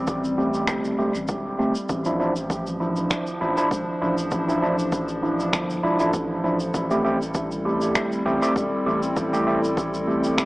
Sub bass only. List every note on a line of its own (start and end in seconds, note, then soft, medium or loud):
0.00 0.70 A1 loud
0.68 0.95 G1 medium
0.98 1.13 E1 medium
1.15 1.28 A1 medium
1.29 1.56 E1 medium
1.59 1.74 G1 loud
1.89 3.08 A1 loud
3.41 3.56 A1 medium
3.71 3.86 E1 loud
4.02 4.29 A1 medium
4.32 5.54 A1 loud
5.53 5.80 G1 medium
5.83 5.98 E1 medium
6.00 6.72 A1 medium
6.74 7.93 A1 loud
8.26 8.40 A1 medium
8.56 8.71 E1 loud
8.86 9.13 A1 medium
9.17 10.39 A1 loud
10.38 10.45 G1 medium